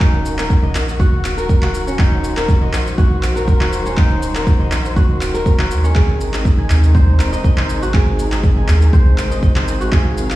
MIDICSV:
0, 0, Header, 1, 5, 480
1, 0, Start_track
1, 0, Tempo, 495868
1, 5, Time_signature, 4, 2, 24, 8
1, 10026, End_track
2, 0, Start_track
2, 0, Title_t, "Kora"
2, 0, Program_c, 0, 46
2, 0, Note_on_c, 0, 61, 73
2, 0, Note_on_c, 0, 66, 77
2, 0, Note_on_c, 0, 70, 97
2, 5, Note_on_c, 0, 63, 92
2, 370, Note_off_c, 0, 70, 0
2, 374, Note_on_c, 0, 70, 70
2, 613, Note_on_c, 0, 75, 75
2, 961, Note_off_c, 0, 66, 0
2, 965, Note_on_c, 0, 66, 98
2, 1328, Note_off_c, 0, 70, 0
2, 1332, Note_on_c, 0, 70, 97
2, 1441, Note_off_c, 0, 70, 0
2, 1445, Note_on_c, 0, 70, 98
2, 1570, Note_off_c, 0, 66, 0
2, 1574, Note_on_c, 0, 66, 77
2, 1575, Note_off_c, 0, 63, 0
2, 1577, Note_off_c, 0, 61, 0
2, 1649, Note_off_c, 0, 75, 0
2, 1813, Note_on_c, 0, 61, 76
2, 1925, Note_on_c, 0, 63, 98
2, 2288, Note_off_c, 0, 70, 0
2, 2292, Note_on_c, 0, 70, 72
2, 2532, Note_on_c, 0, 75, 74
2, 2880, Note_off_c, 0, 66, 0
2, 2884, Note_on_c, 0, 66, 97
2, 3248, Note_off_c, 0, 70, 0
2, 3252, Note_on_c, 0, 70, 95
2, 3362, Note_off_c, 0, 70, 0
2, 3366, Note_on_c, 0, 70, 97
2, 3489, Note_off_c, 0, 66, 0
2, 3493, Note_on_c, 0, 66, 77
2, 3495, Note_off_c, 0, 63, 0
2, 3496, Note_off_c, 0, 61, 0
2, 3568, Note_off_c, 0, 75, 0
2, 3733, Note_on_c, 0, 61, 75
2, 3845, Note_on_c, 0, 63, 95
2, 4208, Note_off_c, 0, 70, 0
2, 4212, Note_on_c, 0, 70, 70
2, 4453, Note_on_c, 0, 75, 77
2, 4800, Note_off_c, 0, 66, 0
2, 4804, Note_on_c, 0, 66, 96
2, 5168, Note_off_c, 0, 70, 0
2, 5172, Note_on_c, 0, 70, 96
2, 5280, Note_off_c, 0, 70, 0
2, 5284, Note_on_c, 0, 70, 97
2, 5408, Note_off_c, 0, 66, 0
2, 5412, Note_on_c, 0, 66, 76
2, 5415, Note_off_c, 0, 63, 0
2, 5416, Note_off_c, 0, 61, 0
2, 5489, Note_off_c, 0, 75, 0
2, 5653, Note_on_c, 0, 61, 74
2, 5765, Note_on_c, 0, 68, 96
2, 6134, Note_on_c, 0, 75, 69
2, 6374, Note_on_c, 0, 80, 77
2, 6516, Note_off_c, 0, 70, 0
2, 6724, Note_on_c, 0, 72, 100
2, 6782, Note_off_c, 0, 61, 0
2, 6827, Note_off_c, 0, 66, 0
2, 7086, Note_off_c, 0, 68, 0
2, 7087, Note_off_c, 0, 75, 0
2, 7091, Note_on_c, 0, 75, 92
2, 7200, Note_off_c, 0, 75, 0
2, 7204, Note_on_c, 0, 75, 101
2, 7245, Note_off_c, 0, 80, 0
2, 7329, Note_off_c, 0, 72, 0
2, 7333, Note_on_c, 0, 72, 79
2, 7572, Note_on_c, 0, 66, 74
2, 7686, Note_on_c, 0, 68, 98
2, 8051, Note_off_c, 0, 75, 0
2, 8055, Note_on_c, 0, 75, 70
2, 8296, Note_on_c, 0, 80, 72
2, 8482, Note_off_c, 0, 72, 0
2, 8647, Note_on_c, 0, 72, 100
2, 8987, Note_off_c, 0, 66, 0
2, 9007, Note_off_c, 0, 68, 0
2, 9011, Note_off_c, 0, 75, 0
2, 9015, Note_on_c, 0, 75, 93
2, 9122, Note_off_c, 0, 75, 0
2, 9126, Note_on_c, 0, 75, 101
2, 9167, Note_off_c, 0, 80, 0
2, 9251, Note_off_c, 0, 72, 0
2, 9255, Note_on_c, 0, 72, 75
2, 9493, Note_on_c, 0, 66, 74
2, 9606, Note_on_c, 0, 68, 96
2, 9971, Note_off_c, 0, 75, 0
2, 9975, Note_on_c, 0, 75, 74
2, 10026, Note_off_c, 0, 66, 0
2, 10026, Note_off_c, 0, 68, 0
2, 10026, Note_off_c, 0, 72, 0
2, 10026, Note_off_c, 0, 75, 0
2, 10026, End_track
3, 0, Start_track
3, 0, Title_t, "String section"
3, 0, Program_c, 1, 48
3, 0, Note_on_c, 1, 51, 79
3, 0, Note_on_c, 1, 54, 71
3, 0, Note_on_c, 1, 58, 73
3, 0, Note_on_c, 1, 66, 89
3, 1884, Note_off_c, 1, 58, 0
3, 1927, Note_on_c, 1, 72, 75
3, 5724, Note_off_c, 1, 54, 0
3, 5725, Note_off_c, 1, 66, 0
3, 5727, Note_off_c, 1, 72, 0
3, 5764, Note_on_c, 1, 63, 88
3, 5765, Note_on_c, 1, 48, 80
3, 5765, Note_on_c, 1, 56, 71
3, 9566, Note_off_c, 1, 63, 0
3, 9603, Note_on_c, 1, 77, 91
3, 10026, Note_off_c, 1, 48, 0
3, 10026, Note_off_c, 1, 51, 0
3, 10026, Note_off_c, 1, 56, 0
3, 10026, Note_off_c, 1, 77, 0
3, 10026, End_track
4, 0, Start_track
4, 0, Title_t, "Analog synth bass"
4, 0, Program_c, 2, 38
4, 0, Note_on_c, 2, 27, 102
4, 692, Note_off_c, 2, 27, 0
4, 723, Note_on_c, 2, 34, 104
4, 923, Note_off_c, 2, 34, 0
4, 965, Note_on_c, 2, 30, 86
4, 1164, Note_off_c, 2, 30, 0
4, 1203, Note_on_c, 2, 27, 108
4, 1891, Note_off_c, 2, 27, 0
4, 1926, Note_on_c, 2, 27, 94
4, 2613, Note_off_c, 2, 27, 0
4, 2645, Note_on_c, 2, 34, 104
4, 3092, Note_off_c, 2, 34, 0
4, 3125, Note_on_c, 2, 34, 99
4, 3324, Note_off_c, 2, 34, 0
4, 3365, Note_on_c, 2, 27, 105
4, 4532, Note_off_c, 2, 27, 0
4, 4564, Note_on_c, 2, 34, 107
4, 4764, Note_off_c, 2, 34, 0
4, 4805, Note_on_c, 2, 30, 85
4, 5004, Note_off_c, 2, 30, 0
4, 5043, Note_on_c, 2, 27, 102
4, 5524, Note_on_c, 2, 39, 79
4, 5539, Note_off_c, 2, 27, 0
4, 5724, Note_off_c, 2, 39, 0
4, 5765, Note_on_c, 2, 32, 96
4, 6452, Note_off_c, 2, 32, 0
4, 6484, Note_on_c, 2, 39, 100
4, 6964, Note_on_c, 2, 27, 103
4, 6979, Note_off_c, 2, 39, 0
4, 7164, Note_off_c, 2, 27, 0
4, 7205, Note_on_c, 2, 32, 103
4, 8372, Note_off_c, 2, 32, 0
4, 8403, Note_on_c, 2, 39, 104
4, 8603, Note_off_c, 2, 39, 0
4, 8645, Note_on_c, 2, 36, 88
4, 8844, Note_off_c, 2, 36, 0
4, 8884, Note_on_c, 2, 32, 108
4, 9572, Note_off_c, 2, 32, 0
4, 9605, Note_on_c, 2, 32, 95
4, 10026, Note_off_c, 2, 32, 0
4, 10026, End_track
5, 0, Start_track
5, 0, Title_t, "Drums"
5, 4, Note_on_c, 9, 39, 91
5, 5, Note_on_c, 9, 36, 123
5, 8, Note_on_c, 9, 82, 38
5, 101, Note_off_c, 9, 39, 0
5, 102, Note_off_c, 9, 36, 0
5, 105, Note_off_c, 9, 82, 0
5, 248, Note_on_c, 9, 82, 92
5, 344, Note_off_c, 9, 82, 0
5, 372, Note_on_c, 9, 39, 78
5, 376, Note_on_c, 9, 82, 53
5, 469, Note_off_c, 9, 39, 0
5, 473, Note_off_c, 9, 82, 0
5, 485, Note_on_c, 9, 36, 116
5, 489, Note_on_c, 9, 82, 40
5, 582, Note_off_c, 9, 36, 0
5, 586, Note_off_c, 9, 82, 0
5, 725, Note_on_c, 9, 39, 91
5, 730, Note_on_c, 9, 82, 89
5, 822, Note_off_c, 9, 39, 0
5, 826, Note_off_c, 9, 82, 0
5, 857, Note_on_c, 9, 82, 54
5, 954, Note_off_c, 9, 82, 0
5, 965, Note_on_c, 9, 36, 121
5, 970, Note_on_c, 9, 82, 38
5, 1062, Note_off_c, 9, 36, 0
5, 1067, Note_off_c, 9, 82, 0
5, 1205, Note_on_c, 9, 39, 78
5, 1209, Note_on_c, 9, 82, 92
5, 1302, Note_off_c, 9, 39, 0
5, 1306, Note_off_c, 9, 82, 0
5, 1337, Note_on_c, 9, 82, 51
5, 1434, Note_off_c, 9, 82, 0
5, 1446, Note_on_c, 9, 36, 120
5, 1449, Note_on_c, 9, 82, 41
5, 1543, Note_off_c, 9, 36, 0
5, 1546, Note_off_c, 9, 82, 0
5, 1572, Note_on_c, 9, 39, 97
5, 1669, Note_off_c, 9, 39, 0
5, 1689, Note_on_c, 9, 82, 91
5, 1786, Note_off_c, 9, 82, 0
5, 1817, Note_on_c, 9, 82, 50
5, 1914, Note_off_c, 9, 82, 0
5, 1925, Note_on_c, 9, 39, 89
5, 1926, Note_on_c, 9, 36, 124
5, 1929, Note_on_c, 9, 82, 39
5, 2022, Note_off_c, 9, 39, 0
5, 2023, Note_off_c, 9, 36, 0
5, 2026, Note_off_c, 9, 82, 0
5, 2169, Note_on_c, 9, 82, 94
5, 2266, Note_off_c, 9, 82, 0
5, 2293, Note_on_c, 9, 39, 78
5, 2298, Note_on_c, 9, 82, 52
5, 2390, Note_off_c, 9, 39, 0
5, 2394, Note_off_c, 9, 82, 0
5, 2406, Note_on_c, 9, 36, 123
5, 2409, Note_on_c, 9, 82, 42
5, 2503, Note_off_c, 9, 36, 0
5, 2506, Note_off_c, 9, 82, 0
5, 2644, Note_on_c, 9, 39, 88
5, 2649, Note_on_c, 9, 82, 89
5, 2741, Note_off_c, 9, 39, 0
5, 2746, Note_off_c, 9, 82, 0
5, 2778, Note_on_c, 9, 82, 52
5, 2875, Note_off_c, 9, 82, 0
5, 2886, Note_on_c, 9, 36, 126
5, 2890, Note_on_c, 9, 82, 39
5, 2983, Note_off_c, 9, 36, 0
5, 2987, Note_off_c, 9, 82, 0
5, 3125, Note_on_c, 9, 39, 77
5, 3129, Note_on_c, 9, 82, 94
5, 3222, Note_off_c, 9, 39, 0
5, 3226, Note_off_c, 9, 82, 0
5, 3258, Note_on_c, 9, 82, 53
5, 3355, Note_off_c, 9, 82, 0
5, 3366, Note_on_c, 9, 36, 124
5, 3370, Note_on_c, 9, 82, 41
5, 3463, Note_off_c, 9, 36, 0
5, 3466, Note_off_c, 9, 82, 0
5, 3493, Note_on_c, 9, 39, 92
5, 3590, Note_off_c, 9, 39, 0
5, 3609, Note_on_c, 9, 82, 93
5, 3705, Note_off_c, 9, 82, 0
5, 3737, Note_on_c, 9, 82, 52
5, 3834, Note_off_c, 9, 82, 0
5, 3845, Note_on_c, 9, 39, 86
5, 3846, Note_on_c, 9, 36, 124
5, 3849, Note_on_c, 9, 82, 38
5, 3942, Note_off_c, 9, 39, 0
5, 3943, Note_off_c, 9, 36, 0
5, 3946, Note_off_c, 9, 82, 0
5, 4089, Note_on_c, 9, 82, 91
5, 4186, Note_off_c, 9, 82, 0
5, 4213, Note_on_c, 9, 39, 74
5, 4217, Note_on_c, 9, 82, 52
5, 4310, Note_off_c, 9, 39, 0
5, 4314, Note_off_c, 9, 82, 0
5, 4326, Note_on_c, 9, 36, 120
5, 4329, Note_on_c, 9, 82, 41
5, 4423, Note_off_c, 9, 36, 0
5, 4426, Note_off_c, 9, 82, 0
5, 4565, Note_on_c, 9, 39, 89
5, 4569, Note_on_c, 9, 82, 89
5, 4661, Note_off_c, 9, 39, 0
5, 4666, Note_off_c, 9, 82, 0
5, 4698, Note_on_c, 9, 82, 52
5, 4795, Note_off_c, 9, 82, 0
5, 4805, Note_on_c, 9, 36, 123
5, 4809, Note_on_c, 9, 82, 39
5, 4902, Note_off_c, 9, 36, 0
5, 4906, Note_off_c, 9, 82, 0
5, 5044, Note_on_c, 9, 39, 73
5, 5048, Note_on_c, 9, 82, 93
5, 5141, Note_off_c, 9, 39, 0
5, 5145, Note_off_c, 9, 82, 0
5, 5176, Note_on_c, 9, 82, 50
5, 5273, Note_off_c, 9, 82, 0
5, 5285, Note_on_c, 9, 36, 120
5, 5288, Note_on_c, 9, 82, 39
5, 5382, Note_off_c, 9, 36, 0
5, 5385, Note_off_c, 9, 82, 0
5, 5413, Note_on_c, 9, 39, 91
5, 5510, Note_off_c, 9, 39, 0
5, 5528, Note_on_c, 9, 82, 94
5, 5625, Note_off_c, 9, 82, 0
5, 5657, Note_on_c, 9, 82, 50
5, 5754, Note_off_c, 9, 82, 0
5, 5763, Note_on_c, 9, 39, 85
5, 5765, Note_on_c, 9, 36, 115
5, 5767, Note_on_c, 9, 82, 38
5, 5860, Note_off_c, 9, 39, 0
5, 5862, Note_off_c, 9, 36, 0
5, 5864, Note_off_c, 9, 82, 0
5, 6008, Note_on_c, 9, 82, 90
5, 6105, Note_off_c, 9, 82, 0
5, 6133, Note_on_c, 9, 39, 74
5, 6137, Note_on_c, 9, 82, 51
5, 6229, Note_off_c, 9, 39, 0
5, 6234, Note_off_c, 9, 82, 0
5, 6245, Note_on_c, 9, 36, 118
5, 6249, Note_on_c, 9, 82, 38
5, 6342, Note_off_c, 9, 36, 0
5, 6346, Note_off_c, 9, 82, 0
5, 6484, Note_on_c, 9, 39, 82
5, 6489, Note_on_c, 9, 82, 91
5, 6581, Note_off_c, 9, 39, 0
5, 6585, Note_off_c, 9, 82, 0
5, 6617, Note_on_c, 9, 82, 49
5, 6714, Note_off_c, 9, 82, 0
5, 6725, Note_on_c, 9, 36, 121
5, 6729, Note_on_c, 9, 82, 37
5, 6822, Note_off_c, 9, 36, 0
5, 6826, Note_off_c, 9, 82, 0
5, 6964, Note_on_c, 9, 39, 74
5, 6969, Note_on_c, 9, 82, 90
5, 7061, Note_off_c, 9, 39, 0
5, 7066, Note_off_c, 9, 82, 0
5, 7097, Note_on_c, 9, 82, 50
5, 7194, Note_off_c, 9, 82, 0
5, 7205, Note_on_c, 9, 36, 116
5, 7210, Note_on_c, 9, 82, 40
5, 7302, Note_off_c, 9, 36, 0
5, 7306, Note_off_c, 9, 82, 0
5, 7333, Note_on_c, 9, 39, 86
5, 7430, Note_off_c, 9, 39, 0
5, 7449, Note_on_c, 9, 82, 88
5, 7545, Note_off_c, 9, 82, 0
5, 7577, Note_on_c, 9, 82, 51
5, 7674, Note_off_c, 9, 82, 0
5, 7684, Note_on_c, 9, 39, 85
5, 7685, Note_on_c, 9, 36, 114
5, 7689, Note_on_c, 9, 82, 35
5, 7781, Note_off_c, 9, 39, 0
5, 7782, Note_off_c, 9, 36, 0
5, 7786, Note_off_c, 9, 82, 0
5, 7929, Note_on_c, 9, 82, 85
5, 8026, Note_off_c, 9, 82, 0
5, 8053, Note_on_c, 9, 39, 71
5, 8057, Note_on_c, 9, 82, 49
5, 8150, Note_off_c, 9, 39, 0
5, 8154, Note_off_c, 9, 82, 0
5, 8166, Note_on_c, 9, 36, 110
5, 8169, Note_on_c, 9, 82, 38
5, 8262, Note_off_c, 9, 36, 0
5, 8266, Note_off_c, 9, 82, 0
5, 8405, Note_on_c, 9, 39, 84
5, 8409, Note_on_c, 9, 82, 85
5, 8501, Note_off_c, 9, 39, 0
5, 8506, Note_off_c, 9, 82, 0
5, 8538, Note_on_c, 9, 82, 47
5, 8634, Note_off_c, 9, 82, 0
5, 8646, Note_on_c, 9, 36, 113
5, 8650, Note_on_c, 9, 82, 37
5, 8742, Note_off_c, 9, 36, 0
5, 8746, Note_off_c, 9, 82, 0
5, 8884, Note_on_c, 9, 39, 76
5, 8889, Note_on_c, 9, 82, 85
5, 8981, Note_off_c, 9, 39, 0
5, 8986, Note_off_c, 9, 82, 0
5, 9017, Note_on_c, 9, 82, 47
5, 9114, Note_off_c, 9, 82, 0
5, 9125, Note_on_c, 9, 36, 113
5, 9130, Note_on_c, 9, 82, 38
5, 9222, Note_off_c, 9, 36, 0
5, 9226, Note_off_c, 9, 82, 0
5, 9253, Note_on_c, 9, 39, 87
5, 9350, Note_off_c, 9, 39, 0
5, 9369, Note_on_c, 9, 82, 90
5, 9466, Note_off_c, 9, 82, 0
5, 9498, Note_on_c, 9, 82, 49
5, 9594, Note_off_c, 9, 82, 0
5, 9605, Note_on_c, 9, 39, 86
5, 9606, Note_on_c, 9, 36, 116
5, 9610, Note_on_c, 9, 82, 35
5, 9702, Note_off_c, 9, 39, 0
5, 9703, Note_off_c, 9, 36, 0
5, 9706, Note_off_c, 9, 82, 0
5, 9850, Note_on_c, 9, 82, 86
5, 9947, Note_off_c, 9, 82, 0
5, 9973, Note_on_c, 9, 39, 75
5, 9978, Note_on_c, 9, 82, 47
5, 10026, Note_off_c, 9, 39, 0
5, 10026, Note_off_c, 9, 82, 0
5, 10026, End_track
0, 0, End_of_file